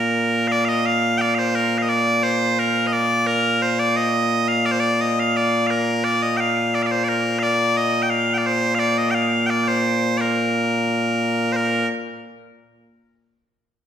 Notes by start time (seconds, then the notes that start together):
Already playing: A#2 A#3 A#4
0.48 F5
0.52 D5
0.65 D#5 F5
0.86 F5
1.18 D5 G5
1.35 C5 F5
1.55 A#4
1.78 F5
1.82 D#5
1.89 D5
2.23 C5
2.59 A#4
2.87 D#5
2.92 D5
3.27 A#4
3.62 C5
3.80 D5
3.96 D#5
4.48 F5
4.66 D5
4.72 C5
4.80 D5
5.01 D#5
5.20 F5
5.37 D5
5.67 A#4 F5
6.04 D5
6.22 D#5
6.37 F5 G5
6.75 D5
6.83 D5 F5
6.91 C5
7.04 D5
7.09 A#4
7.39 D5 F5
7.77 D#5
8.02 G5
8.10 F5
8.34 D5 G5
8.46 C5
8.75 F5
8.79 D5
8.98 D#5
9.11 F5 G5
9.46 D5 G5
9.68 C5
10.18 A#4 D5
11.52 A#4 C5